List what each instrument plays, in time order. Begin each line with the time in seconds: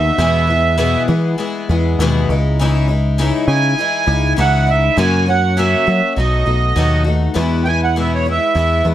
Already playing: picked electric bass D#2, twelve-string acoustic guitar B3 D#4 F#4, accordion E5
0.18 twelve-string acoustic guitar E2 B2 E3 G#3 B3 G#4, picked electric bass E2
0.47 twelve-string acoustic guitar E3 G#3 B3 G#4
0.78 twelve-string acoustic guitar E2 B2 E3 G#3 B3 G#4
1.08 picked electric bass E3, twelve-string acoustic guitar E3 G#3 B3 G#4
1.38 twelve-string acoustic guitar E3 G#3 B3 G#4
1.69 picked electric bass E2, twelve-string acoustic guitar E3 G#3 B3 G#4
1.99 picked electric bass D#2, twelve-string acoustic guitar E2 B2 E3 G#3 B3 G#4
2.29 picked electric bass C#2, twelve-string acoustic guitar G#3 D#4 E4
2.59 twelve-string acoustic guitar C#3 E3 G#3 D#4 E4
2.88 twelve-string acoustic guitar G#3 D#4 E4
3.18 twelve-string acoustic guitar C#3 E3 G#3 D#4 E4
3.47 picked electric bass C#3, twelve-string acoustic guitar G#3 D#4 E4, accordion G#5
3.78 twelve-string acoustic guitar E3 G#3 D#4 E4
4.06 picked electric bass C#2, twelve-string acoustic guitar G#3 D#4 E4
4.36 picked electric bass C#2, twelve-string acoustic guitar C#3 E3 G#3 D#4 E4, accordion F#5
4.67 twelve-string acoustic guitar G#3 D#4 E4, accordion E5
4.97 twelve-string acoustic guitar F#2 C#3 F#3 A#3 C#4 F#4, picked electric bass F#2, accordion G#5
5.26 twelve-string acoustic guitar F#3 A#3 C#4 F#4, accordion F#5
5.57 twelve-string acoustic guitar F#2 C#3 F#3 A#3 C#4 F#4, accordion E5
5.87 picked electric bass F#3, twelve-string acoustic guitar F#3 A#3 C#4 F#4
6.16 picked electric bass B1, twelve-string acoustic guitar F#3 A3 D#4 F#4, accordion D#5
6.46 picked electric bass B1, twelve-string acoustic guitar A3 D#4 F#4
6.76 picked electric bass D#2, twelve-string acoustic guitar B2 F#3 A3 D#4 F#4
7.04 twelve-string acoustic guitar A3 D#4 F#4
7.34 twelve-string acoustic guitar E2 B2 E3 G#3 B3 E4, picked electric bass E2
7.64 twelve-string acoustic guitar E3 G#3 B3 E4, accordion G5 G#5
7.84 accordion F#5
7.96 twelve-string acoustic guitar E2 B2 E3 G#3 B3 E4, accordion E5
8.14 accordion C#5
8.26 twelve-string acoustic guitar E3 G#3 B3 E4
8.30 accordion E5
8.55 picked electric bass E2, twelve-string acoustic guitar E3 G#3 B3 E4
8.85 picked electric bass E2, twelve-string acoustic guitar E3 G#3 B3 E4